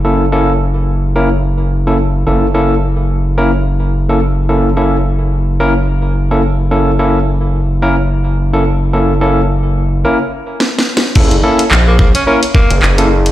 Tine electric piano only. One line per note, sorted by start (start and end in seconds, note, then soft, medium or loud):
0.05 0.24 A#3 medium
0.05 0.24 C#4 medium
0.05 0.24 E4 medium
0.05 0.24 A4 medium
0.32 0.52 A#3 medium
0.32 0.52 C#4 medium
0.32 0.52 E4 medium
0.32 0.52 A4 medium
1.16 1.28 A#3 medium
1.16 1.28 C#4 medium
1.16 1.28 E4 medium
1.16 1.28 A#4 medium
1.87 1.97 A#3 medium
1.87 1.97 C#4 medium
1.87 1.97 E4 medium
1.87 1.97 A4 medium
2.27 2.46 A#3 medium
2.27 2.46 C#4 medium
2.27 2.46 E4 medium
2.27 2.46 A4 medium
2.54 2.74 A#3 medium
2.54 2.74 C#4 medium
2.54 2.74 E4 medium
2.54 2.74 A4 medium
3.38 3.51 A#3 medium
3.38 3.51 C#4 medium
3.38 3.51 E4 medium
3.38 3.51 A#4 medium
4.09 4.19 A#3 medium
4.09 4.19 C#4 medium
4.09 4.19 E4 medium
4.09 4.19 A4 medium
4.49 4.68 A#3 medium
4.49 4.68 C#4 medium
4.49 4.68 E4 medium
4.49 4.68 A4 medium
4.77 4.96 A#3 medium
4.77 4.96 C#4 medium
4.77 4.96 E4 medium
4.77 4.96 A4 medium
5.60 5.73 A#3 medium
5.60 5.73 C#4 medium
5.60 5.73 E4 medium
5.60 5.73 A#4 medium
6.31 6.41 A#3 medium
6.31 6.41 C#4 medium
6.31 6.41 E4 medium
6.31 6.41 A4 medium
6.71 6.91 A#3 medium
6.71 6.91 C#4 medium
6.71 6.91 E4 medium
6.71 6.91 A4 medium
6.99 7.18 A#3 medium
6.99 7.18 C#4 medium
6.99 7.18 E4 medium
6.99 7.18 A4 medium
7.82 7.95 A#3 medium
7.82 7.95 C#4 medium
7.82 7.95 E4 medium
7.82 7.95 A#4 medium
8.53 8.63 A#3 medium
8.53 8.63 C#4 medium
8.53 8.63 E4 medium
8.53 8.63 A4 medium
8.93 9.13 A#3 medium
8.93 9.13 C#4 medium
8.93 9.13 E4 medium
8.93 9.13 A4 medium
9.21 9.41 A#3 medium
9.21 9.41 C#4 medium
9.21 9.41 E4 medium
9.21 9.41 A4 medium
10.05 10.17 A#3 medium
10.05 10.17 C#4 medium
10.05 10.17 E4 medium
10.05 10.17 A#4 medium
11.16 11.35 A#3 medium
11.16 11.35 C#4 medium
11.16 11.35 E4 medium
11.16 11.35 A4 medium
11.43 11.63 A#3 medium
11.43 11.63 C#4 medium
11.43 11.63 E4 medium
11.43 11.63 A4 medium
12.27 12.40 A#3 medium
12.27 12.40 C#4 medium
12.27 12.40 E4 medium
12.27 12.40 A#4 loud
12.98 13.08 A#3 medium
12.98 13.08 C#4 medium
12.98 13.08 E4 medium
12.98 13.08 A4 medium